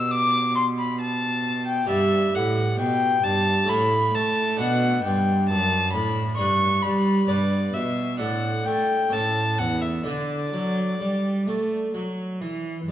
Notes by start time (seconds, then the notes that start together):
Already playing: B2 B3 G4 D5 E6
0.12 D6
0.56 C6
0.79 B5
1.01 A5
1.67 G5
1.85 G2 B3 G4 D5
1.90 G2 E5
2.34 A2 F#5
2.79 B2 G5
3.23 G2 A5
3.65 A3 E4 C#5
3.69 A2 B5
4.13 A3 A5
4.57 B2 D4 B4 F#5
5.04 G2 G5
5.49 F#2 A5
5.93 A2 B5
6.36 G2 D4 B4 C#6
6.82 G3 B5
7.27 G2 B3 B4 D5
7.74 B2 E5
8.17 A2 D4 A4 F#5
8.65 A3 G5
9.10 A2 C#4 A4 A5
9.58 E2 F#5
9.82 E5
10.03 D3 D4 A4 D5
10.52 F#3
11.00 G3
11.47 A3
11.94 F#3
12.41 E3
12.87 G2 D5